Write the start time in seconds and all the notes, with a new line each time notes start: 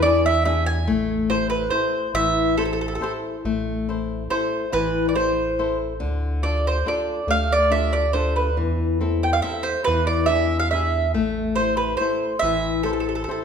Already playing: E2
0.02 D4 E4 G#4 D5
0.26 E5
0.45 D4 E4 G#4 E5
0.66 G#5
0.87 A1 A3
1.30 E4 A4 C5
1.50 B4
1.70 E4 A4 C5
2.14 A1 E3 E5
2.57 E4 A4 C5
2.65 A4
2.73 A4
2.81 A4
2.88 A4
2.95 A4
3.01 E4 A4 C5
3.45 A1 A3
3.89 E4 A4 C5
4.30 E4 A4 C5
4.72 A1 E3 B4
5.09 D5
5.15 E4 A4 C5
5.59 E4 A4 C5
6.00 D2 D3
6.43 D4 F4 A4 D5
6.67 C5
6.86 D4 F4 A4 D5
7.27 D2 A3 F5
7.52 D5
7.70 D4 F4 A4 E5
7.93 D5
8.13 D4 F4 A4 C5
8.36 B4
8.57 E2 E3
9.01 C4 E4 A4
9.23 G5
9.33 F5
9.42 C4 E4 A4 E5
9.63 C5
9.84 E2 E3 B4
10.07 D5
10.26 D4 E5
10.31 E4 G#4
10.60 F5
10.71 D4 E4 G#4 E5
11.14 A1 A3
11.55 E4 A4 C5
11.77 B4
11.97 E4 A4 C5
12.01 C5
12.39 A1 E3 E5
12.83 E4 A4 C5
12.93 A4
13.00 A4
13.09 A4
13.15 A4
13.24 A4
13.28 E4 A4 C5